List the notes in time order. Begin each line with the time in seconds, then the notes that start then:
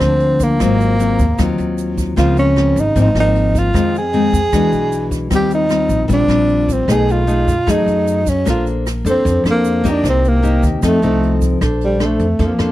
Already playing: D3 C4
0.00 D2 F3 A#3 D4, cross-stick, closed hi-hat, shaker
0.20 closed hi-hat
0.40 A#3, kick, closed hi-hat, shaker
0.60 G#1 G#2 F#3 C4 F4, kick, cross-stick, closed hi-hat, shaker
0.80 closed hi-hat, shaker
0.99 F#3 C4 F4, closed hi-hat, shaker
1.19 D#2, kick, closed hi-hat, shaker
1.38 D#2 D#3 F#3 C4 F4, kick, cross-stick, closed hi-hat, shaker
1.58 D#2, closed hi-hat, shaker
1.78 closed hi-hat, shaker
1.97 kick, closed hi-hat, shaker
2.16 C#2 C#3 F3 A#3 C4 F4, kick, cross-stick, closed hi-hat, shaker
2.37 C#4, closed hi-hat, shaker
2.56 F3 A#3 C4, cross-stick, closed hi-hat
2.76 G#1, closed hi-hat, shaker
2.80 D#4
2.95 G#1 G#2 F3 A#3 C4, kick, closed hi-hat, shaker
3.01 D#4
3.15 G#1 F3 A#3 C4, cross-stick, closed hi-hat, shaker
3.20 D#4
3.35 closed hi-hat
3.55 F4, kick, closed hi-hat, shaker
3.73 F2 D#3 G#3 C4, kick, cross-stick, closed hi-hat, shaker
3.94 G#4, closed hi-hat, shaker
4.13 D#3 G#3 C4, closed hi-hat
4.33 F2, kick, closed hi-hat, shaker
4.52 E2 E3 G#3 D4 F#4, kick, cross-stick, closed hi-hat, shaker
4.72 B1, closed hi-hat, shaker
4.92 closed hi-hat, shaker
5.11 kick, closed hi-hat, shaker
5.30 D#2 D#3 G3 C4 F4, kick, cross-stick, closed hi-hat, shaker
5.35 G4
5.50 D#4, closed hi-hat, shaker
5.69 G3 C4 F4, cross-stick, closed hi-hat, shaker
5.89 A#1, closed hi-hat, shaker
6.08 A#1 A#2 G3 C4 F4, kick, closed hi-hat, shaker
6.13 D4
6.28 A#1 G3 C4 F4, cross-stick, closed hi-hat, shaker
6.48 closed hi-hat
6.68 C4, kick, closed hi-hat, shaker
6.88 B1 B2 A3 D#4 G#4, kick, cross-stick, closed hi-hat, shaker
6.92 G#4
7.08 F4, closed hi-hat, shaker
7.27 A3 D#4 G#4, closed hi-hat, shaker
7.47 F#2, kick, closed hi-hat, shaker
7.67 F#2 F#3 A3 D#4 G#4, kick, cross-stick, closed hi-hat, shaker
7.71 D#4
7.86 F#2, closed hi-hat, shaker
8.07 closed hi-hat, shaker
8.26 C#4, kick, closed hi-hat, shaker
8.45 A#1 A#3 D4 A4 C5, kick, cross-stick, closed hi-hat, shaker
8.49 F4
8.66 closed hi-hat, shaker
8.86 cross-stick, closed hi-hat, shaker
9.05 F2 D4 A4 C5, closed hi-hat, shaker
9.10 C4
9.25 F2 F3, kick, closed hi-hat, shaker
9.44 F2 D4 A4 C5, cross-stick, closed hi-hat, shaker
9.50 A#3
9.65 closed hi-hat, shaker
9.84 A#3 D#4 G4, kick, closed hi-hat, shaker
9.90 D4
10.03 C2 C3, kick, cross-stick, closed hi-hat, shaker
10.09 C4
10.24 closed hi-hat, shaker
10.29 A#3
10.43 A#3 D#4 G4, closed hi-hat, shaker
10.63 D#2, kick, closed hi-hat, shaker
10.82 F2 F3 C4 D#4 A4, kick, cross-stick, closed hi-hat, shaker
10.87 A3
11.02 C2 C4 D#4 A4, closed hi-hat, shaker
11.23 closed hi-hat
11.42 kick, closed hi-hat, shaker
11.61 A#1 D4 A4 C5, kick, cross-stick, closed hi-hat
11.81 G3, closed hi-hat
12.00 D4 A4 C5, cross-stick, closed hi-hat
12.05 A3
12.19 F2, closed hi-hat
12.39 F2 F3 D4 A4 C5, kick, closed hi-hat
12.46 A#3
12.59 F2 D4 A4 C5, cross-stick, closed hi-hat